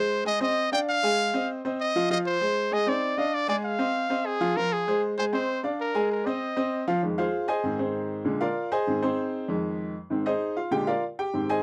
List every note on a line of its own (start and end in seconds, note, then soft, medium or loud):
0.00 0.20 G#3 medium
0.00 0.20 G#4 medium
0.00 0.20 C5 medium
0.00 0.23 C5 loud
0.24 0.38 G#3 medium
0.24 0.38 G#4 medium
0.24 0.41 D#5 loud
0.24 0.38 G#5 medium
0.40 0.66 C4 medium
0.40 0.66 C5 medium
0.40 0.66 D#5 medium
0.40 0.71 D#5 loud
0.72 0.97 D4 medium
0.72 0.97 D5 medium
0.72 0.98 F5 medium
0.72 0.80 G5 loud
0.90 1.50 F5 loud
1.03 1.28 G#3 loud
1.03 1.28 G#4 loud
1.03 1.28 G#5 medium
1.34 1.59 C4 medium
1.34 1.59 C5 medium
1.34 1.59 D#5 medium
1.65 1.90 C4 medium
1.65 1.90 C5 medium
1.65 1.90 D#5 medium
1.80 2.09 D#5 loud
1.95 2.08 F3 medium
1.95 2.08 F4 medium
1.95 2.08 F5 medium
2.10 2.35 F3 medium
2.10 2.36 F4 medium
2.10 2.18 D#5 loud
2.10 2.36 F5 medium
2.26 2.75 C5 loud
2.41 2.66 G#3 medium
2.41 2.66 G#4 medium
2.41 2.66 C5 medium
2.71 2.84 G#3 medium
2.71 2.84 G#4 medium
2.71 2.90 D#5 loud
2.71 2.85 G#5 medium
2.87 3.12 C4 medium
2.87 3.12 D#4 medium
2.87 3.12 C5 medium
2.87 3.20 D5 loud
3.17 3.43 D4 medium
3.17 3.43 D5 medium
3.17 3.36 D#5 loud
3.17 3.43 F5 medium
3.34 3.49 D5 loud
3.48 3.73 G#3 loud
3.48 3.74 G#4 loud
3.48 3.56 D5 medium
3.48 3.74 G#5 medium
3.64 4.28 F5 loud
3.79 4.04 C4 medium
3.79 4.04 C5 medium
3.79 4.05 D#5 medium
4.10 4.35 C4 medium
4.10 4.35 C5 medium
4.10 4.36 D#5 medium
4.26 4.58 G#4 loud
4.40 4.53 F3 medium
4.40 4.54 F4 loud
4.40 4.54 F5 loud
4.56 4.82 F3 medium
4.56 4.82 F4 medium
4.56 4.74 A#4 loud
4.56 4.82 F5 medium
4.73 5.03 G#4 medium
4.87 5.13 G#3 medium
4.87 5.13 G#4 medium
4.87 5.13 C5 medium
5.18 5.31 G#3 medium
5.18 5.31 G#4 medium
5.18 5.25 C5 loud
5.18 5.31 G#5 medium
5.33 5.58 C4 medium
5.33 5.58 C5 medium
5.33 5.62 C5 medium
5.33 5.58 D#5 medium
5.63 5.89 D4 medium
5.63 5.89 D5 medium
5.63 5.89 F5 medium
5.81 6.09 A#4 medium
5.95 6.20 G#3 medium
5.95 6.20 G#4 medium
5.95 6.20 G#5 loud
6.11 6.28 A#4 medium
6.26 6.51 C4 medium
6.26 6.51 C5 medium
6.26 6.88 D#5 loud
6.26 6.51 D#5 medium
6.56 6.82 C4 medium
6.56 6.82 C5 medium
6.56 6.82 D#5 medium
6.87 7.00 F3 medium
6.87 7.00 F4 medium
6.87 7.00 F5 medium
7.03 7.23 F2 medium
7.03 7.23 D#3 medium
7.03 7.24 G#3 medium
7.18 7.47 F4 medium
7.18 7.47 G#4 medium
7.18 7.47 C5 medium
7.18 7.46 F5 medium
7.48 7.77 G#4 medium
7.48 7.77 C5 medium
7.48 7.77 D#5 medium
7.48 7.77 G#5 medium
7.63 8.22 G#2 medium
7.63 8.22 D#3 medium
7.63 7.78 C4 medium
7.79 8.22 C4 medium
7.79 8.22 D#4 medium
7.79 8.22 G#4 medium
7.79 8.22 C5 medium
8.25 8.45 A#2 medium
8.25 8.46 D3 medium
8.25 8.46 G#3 medium
8.41 8.69 F4 medium
8.41 8.70 A#4 medium
8.41 8.69 D5 medium
8.41 8.69 F5 medium
8.72 9.00 G#4 medium
8.72 9.00 C5 medium
8.72 9.00 D#5 medium
8.72 9.00 G#5 medium
8.87 9.07 G#2 medium
8.87 9.08 D#3 soft
8.87 9.02 C4 medium
9.02 9.46 C4 medium
9.02 9.46 D#4 medium
9.02 9.46 G#4 medium
9.02 9.45 C5 medium
9.48 9.92 F2 medium
9.48 9.92 D#3 medium
9.48 9.93 G#3 medium
10.10 10.30 G#2 medium
10.10 10.31 D#3 soft
10.10 10.31 C4 medium
10.26 10.54 D#4 medium
10.26 10.55 G#4 medium
10.26 10.55 C5 medium
10.26 10.54 D#5 medium
10.57 10.71 F4 medium
10.57 10.71 F5 medium
10.71 10.92 A#2 medium
10.71 10.92 D3 medium
10.71 10.92 G#3 medium
10.71 10.87 G4 medium
10.71 10.87 G5 medium
10.87 11.02 F4 medium
10.87 11.02 A#4 medium
10.87 11.02 D5 medium
10.87 11.02 F5 medium
11.19 11.47 G4 medium
11.19 11.47 G5 medium
11.33 11.63 G#2 medium
11.33 11.63 D#3 soft
11.33 11.63 C4 medium
11.49 11.63 G#4 medium
11.49 11.63 C5 medium
11.49 11.63 D#5 medium
11.49 11.63 G#5 loud